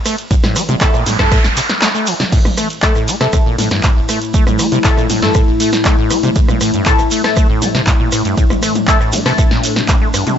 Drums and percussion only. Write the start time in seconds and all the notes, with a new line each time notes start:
0.05 cross-stick, open hi-hat, ride, shekere
0.18 closed hi-hat, shekere
0.31 kick, closed hi-hat, ride, shekere
0.43 cross-stick, snare, mid tom, shekere
0.56 cross-stick, open hi-hat, ride, shekere
0.69 closed hi-hat, mid tom, shekere
0.81 kick, clap, closed hi-hat, ride, shekere
0.94 cross-stick, shekere
1.06 open hi-hat, mid tom, ride, shekere
1.19 kick, cross-stick, snare, closed hi-hat, shekere
1.32 kick, cross-stick, closed hi-hat, ride, shekere
1.44 snare, shekere
1.56 clap, open hi-hat, ride, shekere
1.69 cross-stick, snare, closed hi-hat, shekere
1.82 snare, clap, closed hi-hat, ride, shekere
1.95 shekere
2.06 open hi-hat, ride, shekere
2.20 snare, closed hi-hat, mid tom, shekere
2.32 kick, closed hi-hat, ride, crash, shekere
2.45 cross-stick, mid tom, shekere
2.57 cross-stick, open hi-hat, ride, shekere
2.70 closed hi-hat, shekere
2.82 kick, clap, closed hi-hat, ride, shekere
2.95 cross-stick, shekere
3.08 open hi-hat, ride, shekere
3.21 cross-stick, snare, closed hi-hat, shekere
3.33 kick, cross-stick, closed hi-hat, ride, shekere
3.58 open hi-hat, mid tom, ride, shekere
3.70 cross-stick, snare, closed hi-hat, shekere
3.83 kick, clap, closed hi-hat, ride, shekere
4.09 cross-stick, open hi-hat, ride, shekere
4.22 closed hi-hat, shekere
4.34 kick, closed hi-hat, ride, shekere
4.47 cross-stick, mid tom, shekere
4.59 cross-stick, open hi-hat, ride, shekere
4.72 closed hi-hat, mid tom, shekere
4.84 kick, clap, closed hi-hat, ride, shekere
4.97 cross-stick, shekere
5.10 open hi-hat, mid tom, ride, shekere
5.22 snare, closed hi-hat, shekere
5.34 kick, cross-stick, closed hi-hat, ride, shekere
5.60 open hi-hat, ride, shekere
5.72 cross-stick, snare, closed hi-hat, shekere
5.85 kick, clap, closed hi-hat, ride, shekere
6.10 cross-stick, open hi-hat, ride, shekere
6.23 closed hi-hat, mid tom, shekere
6.36 kick, closed hi-hat, ride, shekere
6.48 cross-stick, mid tom, shekere
6.61 cross-stick, open hi-hat, ride, shekere
6.74 closed hi-hat, shekere
6.86 kick, clap, closed hi-hat, ride, shekere
6.98 cross-stick, shekere
7.11 open hi-hat, ride, shekere
7.24 cross-stick, snare, closed hi-hat, shekere
7.36 kick, cross-stick, closed hi-hat, ride, shekere
7.62 open hi-hat, mid tom, ride, shekere
7.75 cross-stick, snare, closed hi-hat, shekere
7.87 kick, clap, closed hi-hat, ride, shekere
8.12 cross-stick, open hi-hat, ride, shekere
8.25 closed hi-hat, shekere
8.37 kick, closed hi-hat, ride, shekere
8.50 cross-stick, mid tom, shekere
8.63 cross-stick, open hi-hat, ride, shekere
8.75 closed hi-hat, mid tom, shekere
8.87 kick, clap, closed hi-hat, ride, shekere
9.01 cross-stick, shekere
9.12 open hi-hat, mid tom, ride, shekere
9.26 cross-stick, snare, open hi-hat, shekere
9.38 kick, cross-stick, closed hi-hat, ride, shekere
9.51 snare
9.64 open hi-hat, ride, shekere
9.76 cross-stick, snare, closed hi-hat, shekere
9.88 kick, clap, closed hi-hat, ride, shekere
10.14 cross-stick, open hi-hat, ride, shekere
10.27 closed hi-hat, mid tom, shekere